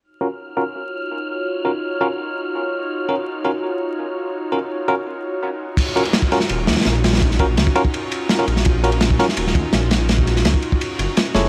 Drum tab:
CC |--------------------------------|--------------------------------|--------------------------------|--------------------------------|
RD |--------------------------------|--------------------------------|--------------------------------|--------------------------------|
SD |--------------------------------|--------------------------------|--------------------------------|--------------------------------|
BD |--------------------------------|--------------------------------|--------------------------------|--------------------------------|

CC |x-------------------------------|--------------------------------|--------------------------------|--------------------------------|
RD |x---x-x-x---x---x---xxxxx-x-xxxx|x---x---x---x---x---x---x-x-x---|x---x-x-x---x---x---x---x-x-x-x-|x---x---x---x---x---x---x-x-x---|
SD |--------o---o-o-----ooooo---oooo|--o-----o---------------o-----o-|--------o---o-o---o-----o---o---|o---o-o-o---------------o---o-o-|
BD |o---------o---------------------|o---o-----o---o-----------------|o---------o---------o-----------|--o-------o---o-----------------|